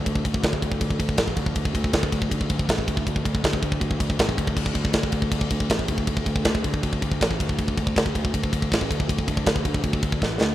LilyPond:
<<
  \new Staff \with { instrumentName = "Picked electric bass" } { \clef bass \time 4/4 \key c \dorian \tempo 4 = 159 d,8 d,8 d,8 d,8 d,8 d,8 a,,8 d,8 | d,8 d,8 d,8 d,8 d,8 d,8 a,,8 d,8 | d,8 d,8 d,8 d,8 d,8 d,8 a,,8 d,8 | d,8 d,8 d,8 d,8 d,8 d,8 a,,8 d,8 |
d,8 d,8 d,8 d,8 d,8 d,8 a,,8 d,8 | d,8 d,8 d,8 d,8 d,8 d,8 a,,8 d,8 | d,8 d,8 d,8 d,8 d,8 d,8 a,,8 d,8 | }
  \new DrumStaff \with { instrumentName = "Drums" } \drummode { \time 4/4 <bd cymr>16 bd16 <bd cymr>16 bd16 <bd cymr sn>16 bd16 <bd cymr>16 bd16 <bd cymr>16 bd16 <bd cymr>16 bd16 <bd cymr sn>16 bd16 <bd cymr>16 bd16 | <bd cymr>16 bd16 <bd cymr>16 bd16 <bd cymr sn>16 bd16 <bd cymr>16 bd16 <bd cymr>16 bd16 <bd cymr>16 bd16 <bd cymr sn>16 bd16 <bd cymr>16 bd16 | <bd cymr>16 bd16 <bd cymr>16 bd16 <bd cymr sn>16 bd16 <bd cymr>16 bd16 <bd cymr>16 bd16 <bd cymr>16 bd16 <bd cymr sn>16 bd16 <bd cymr>16 bd16 | <cymc bd>16 bd16 <bd cymr>16 bd16 <bd cymr sn>16 bd16 <bd cymr>16 bd16 <bd cymr>16 bd16 <bd cymr>16 bd16 <bd cymr sn>16 bd16 <bd cymr>16 bd16 |
<bd cymr>16 bd16 <bd cymr>16 bd16 <bd cymr sn>16 bd16 <bd cymr>16 bd16 <bd cymr>16 bd16 <bd cymr>16 bd16 <bd cymr sn>16 bd16 <bd cymr>16 bd16 | <bd cymr>16 bd16 <bd cymr>16 bd16 <bd cymr sn>16 bd16 <bd cymr>16 bd16 <bd cymr>16 bd16 <bd cymr>16 bd16 <bd cymr sn>16 bd16 <bd cymr>16 bd16 | <bd cymr>16 bd16 <bd cymr>16 bd16 <bd cymr sn>16 bd16 <bd cymr>16 bd16 <bd cymr>16 bd16 <bd cymr>16 bd16 <bd sn>8 sn8 | }
>>